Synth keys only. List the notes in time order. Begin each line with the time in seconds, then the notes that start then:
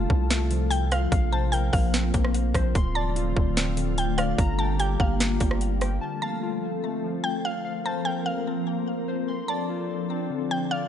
Already playing: F4 F5 A5
0.30 A3
0.51 F3
0.92 F5
1.12 F5
1.32 C5
1.53 A#4
1.94 C4
2.14 A#3
2.55 C5
2.75 C6
2.96 D5
3.16 F4
3.57 C4
3.77 D3
4.18 D5
4.38 A#5
4.59 G5
4.79 G4
5.20 A#3
5.41 G3
5.82 G5
6.01 A5
6.22 F5
6.43 F4
6.83 A3
7.04 F3
7.45 F5
7.65 F5
7.85 C5
8.06 A#4
8.47 C4
8.67 A#3
9.08 C5
9.28 C6
9.49 D5
9.69 F4
10.10 C4
10.30 D3
10.71 D5